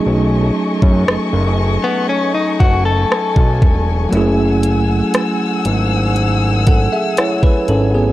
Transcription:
<<
  \new Staff \with { instrumentName = "String section" } { \time 4/4 \key fis \minor \tempo 4 = 59 << { <dis'' cis'''>1 | <fis'' e'''>1 | } \\ { <a gis''>1~ | <a gis''>1 | } >> }
  \new Staff \with { instrumentName = "Tine electric piano" } { \time 4/4 \key fis \minor << { r1 | r2 r8 <a' fis''>16 <gis' e''>16 <e' cis''>16 b'16 <cis' a'>16 <b gis'>16 | } \\ { <fis a cis' dis' gis'>2.~ <fis a cis' dis' gis'>8 r8 | <fis a cis' e' gis'>1 | } >> }
  \new Staff \with { instrumentName = "Clean electric guitar" } { \time 4/4 \key fis \minor r4. r16 b16 cis'16 dis'16 fis'16 a'4~ a'16 | r1 | }
  \new Staff \with { instrumentName = "Analog synth bass" } { \clef bass \time 4/4 \key fis \minor b,,8 r16 fis,16 fis,,16 fis,,8 r8. fis,,8 r16 b,,16 e,,8 | fis,,4 r8 gis,,4~ gis,,16 r8. gis,,8 | }
  \new DrumStaff \with { instrumentName = "Drums" } \drummode { \time 4/4 r8. bd16 ss4 r8 bd8 ss16 bd16 bd8 | hh8 hh8 <hh ss>8 hh8 hh8 <hh bd>8 <hh ss>16 bd16 hh8 | }
>>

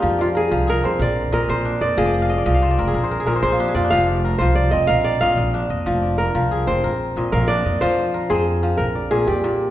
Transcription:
<<
  \new Staff \with { instrumentName = "Kora" } { \time 12/8 \key f \dorian \tempo 4. = 123 r8 f'8 aes'4 bes'8 c''8 d''8 r8 bes'8 c''4 d''8 | aes'4 r2. bes'8 c''4 d''8 | f''4 r8 c''8 d''8 ees''8 f''8 d''8 f''4. r8 | r4 bes'4. c''8 r4. bes'8 d''4 |
c''4 r8 aes'4. bes'4 aes'8 g'4 r8 | }
  \new Staff \with { instrumentName = "Kora" } { \time 12/8 \key f \dorian << { r8 d''8 bes'4 aes'4 bes'4 ees''4. ees''8~ | ees''8 r1 r4. | r8 d''8 bes'4. r8 bes'4 ees''4. ees''8~ | ees''8 d''8 bes'4 aes'4 bes'4 ees''8 f''4 ees''8 |
c''4 bes'8 c''4. r8 d''4 d''8 d''4 | } \\ { f'16 r1 r4. r16 | ees''16 d''16 ees''16 f''16 ees''16 d''16 ees''16 f''16 c''16 d''16 bes'16 aes'16 bes'16 c''16 bes'16 aes'16 bes'16 c''16 aes'16 f'16 g'16 aes'16 f'16 d'16~ | d'16 r1 r4. r16 | r1. |
r1. | } >> }
  \new Staff \with { instrumentName = "Kora" } { \clef bass \time 12/8 \key f \dorian f4 r8 f4 c'8 r4 bes,4 d'4 | f4 r8 f4 c'8 r4 bes,4 d'4 | f4 r8 f4 c'8 r4 bes,4 d'4 | f4 r8 f4 c'8 r4 bes,4 d'4 |
f4 r8 c'4 f8 r4 bes,4 bes,4 | }
  \new Staff \with { instrumentName = "Upright bass" } { \clef bass \time 12/8 \key f \dorian f,4. c,4 f,8 bes,,4 bes,,8 bes,,4 f,8 | f,,4. c,4 f,,8 bes,,4 bes,,8 bes,,4 f,8 | f,,4. c,4 f,,8 bes,,4 bes,,8 bes,,4 f,8 | f,,4. c,4 f,,8 bes,,4 bes,,8 bes,,4 f,8 |
f,8 r4 f,4. bes,,4. f,8 r4 | }
>>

